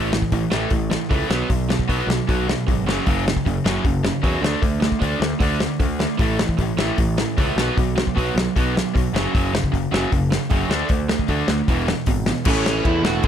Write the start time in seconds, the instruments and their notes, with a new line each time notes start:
Already playing: picked electric bass A1, overdriven electric guitar A2 E3 A3
0.12 overdriven electric guitar A2 E3, snare
0.22 kick
0.32 picked electric bass A1, overdriven electric guitar A2 E3, kick, open hi-hat
0.51 picked electric bass A1, overdriven electric guitar A2 E3 A3, snare
0.70 picked electric bass A1, overdriven electric guitar A2 E3, kick, open hi-hat
0.90 overdriven electric guitar A2 E3, snare
1.10 picked electric bass C#2, overdriven electric guitar A2 E3 A3, kick, open hi-hat
1.28 picked electric bass B1, overdriven electric guitar B2 F#3 B3, snare
1.49 picked electric bass B1, overdriven electric guitar B2 F#3, kick, open hi-hat
1.69 overdriven electric guitar B2 F#3, snare
1.79 kick
1.88 picked electric bass B1, overdriven electric guitar B2 F#3 B3, kick, open hi-hat
2.07 picked electric bass B1, overdriven electric guitar B2 F#3, snare
2.28 picked electric bass B1, overdriven electric guitar B2 F#3 B3, kick, open hi-hat
2.47 overdriven electric guitar B2 F#3, snare
2.67 picked electric bass G#1, overdriven electric guitar B2 F#3, kick, open hi-hat
2.86 picked electric bass F#1, overdriven electric guitar F#2 C#3 F#3, snare
3.06 picked electric bass F#1, overdriven electric guitar F#2 C#3 F#3, kick, open hi-hat
3.27 overdriven electric guitar F#2 C#3, snare
3.37 kick
3.46 picked electric bass F#1, overdriven electric guitar F#2 C#3, kick, open hi-hat
3.65 picked electric bass F#1, overdriven electric guitar F#2 C#3 F#3, snare
3.85 picked electric bass F#1, overdriven electric guitar F#2 C#3, kick, open hi-hat
4.05 overdriven electric guitar F#2 C#3, snare
4.23 picked electric bass E2, overdriven electric guitar F#2 C#3 F#3, kick, open hi-hat
4.41 picked electric bass D2, overdriven electric guitar D3 A3 D4, snare
4.62 picked electric bass D2, overdriven electric guitar D3 A3, kick, open hi-hat
4.80 overdriven electric guitar D3 A3, snare
4.92 kick
4.99 picked electric bass D2, overdriven electric guitar D3 A3 D4, kick, open hi-hat
5.19 picked electric bass D2, overdriven electric guitar D3 A3, snare
5.39 picked electric bass D2, overdriven electric guitar D3 A3 D4, kick, open hi-hat
5.60 overdriven electric guitar D3 A3, snare
5.79 picked electric bass D2, overdriven electric guitar D3 A3, kick, open hi-hat
5.99 overdriven electric guitar D3 A3, snare
6.18 picked electric bass A1, overdriven electric guitar A2 E3 A3, kick, open hi-hat
6.37 overdriven electric guitar A2 E3, snare
6.49 kick
6.57 picked electric bass A1, overdriven electric guitar A2 E3, kick, open hi-hat
6.77 picked electric bass A1, overdriven electric guitar A2 E3 A3, snare
6.98 picked electric bass A1, overdriven electric guitar A2 E3, kick, open hi-hat
7.18 overdriven electric guitar A2 E3, snare
7.38 picked electric bass C#2, overdriven electric guitar A2 E3 A3, kick, open hi-hat
7.56 picked electric bass B1, overdriven electric guitar B2 F#3 B3, snare
7.77 picked electric bass B1, overdriven electric guitar B2 F#3, kick, open hi-hat
7.96 overdriven electric guitar B2 F#3, snare
8.07 kick
8.16 picked electric bass B1, overdriven electric guitar B2 F#3 B3, kick, open hi-hat
8.35 picked electric bass B1, overdriven electric guitar B2 F#3, snare
8.56 picked electric bass B1, overdriven electric guitar B2 F#3 B3, kick, open hi-hat
8.76 overdriven electric guitar B2 F#3, snare
8.94 picked electric bass B1, overdriven electric guitar B2 F#3, kick, open hi-hat
9.13 picked electric bass F#1, overdriven electric guitar F#2 C#3 F#3, snare
9.34 picked electric bass F#1, overdriven electric guitar F#2 C#3 F#3, kick, open hi-hat
9.54 overdriven electric guitar F#2 C#3, snare
9.64 kick
9.72 picked electric bass F#1, overdriven electric guitar F#2 C#3, kick, open hi-hat
9.92 picked electric bass F#1, overdriven electric guitar F#2 C#3 F#3, snare
10.11 picked electric bass F#1, overdriven electric guitar F#2 C#3, kick, open hi-hat
10.30 overdriven electric guitar F#2 C#3, snare
10.50 picked electric bass F#1, overdriven electric guitar F#2 C#3 F#3, kick, open hi-hat
10.69 picked electric bass D2, overdriven electric guitar D3 A3 D4, snare
10.89 picked electric bass D2, overdriven electric guitar D3 A3, kick, open hi-hat
11.08 overdriven electric guitar D3 A3, snare
11.19 kick
11.28 picked electric bass D2, overdriven electric guitar D3 A3 D4, kick, open hi-hat
11.48 picked electric bass D2, overdriven electric guitar D3 A3, snare
11.68 picked electric bass E1, overdriven electric guitar E2 B2 E3, kick, open hi-hat
11.88 overdriven electric guitar E2 B2, snare
12.06 picked electric bass G#1, overdriven electric guitar E2 B2, kick, open hi-hat
12.26 overdriven electric guitar E2 B2, snare
12.45 picked electric bass A1, overdriven electric guitar A2 E3 A3, lead electric guitar C#4 C#5, kick, crash
12.66 lead electric guitar C#4 C#5, snare
12.85 picked electric bass E2, lead electric guitar E4 E5, kick, ride
13.03 picked electric bass E1, overdriven electric guitar E3 A3, lead electric guitar F#4 F#5, snare
13.07 overdriven electric guitar A2
13.23 picked electric bass A1, overdriven electric guitar D3 A3, lead electric guitar G#4, kick, ride